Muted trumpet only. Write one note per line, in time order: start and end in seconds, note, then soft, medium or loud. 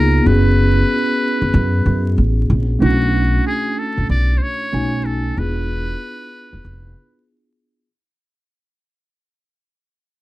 0.00 0.28 A#4 medium
0.27 2.18 B4 medium
2.83 3.42 F#4 medium
3.47 3.80 G#4 medium
3.79 4.10 A4 medium
4.10 4.39 D5 loud
4.37 4.44 C5 medium
4.42 5.08 C#5 loud
5.06 5.40 A4 medium
5.38 7.29 B4 loud